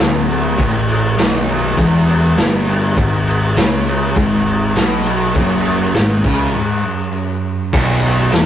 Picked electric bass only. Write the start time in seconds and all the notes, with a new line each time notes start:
0.00 D1
0.58 A1
1.18 B0
1.77 E1
2.37 G1
2.97 G#1
3.56 C#2
4.16 G#1
4.75 B1
5.35 F#1
5.94 G#1
6.24 C#2
7.73 B0
8.33 E1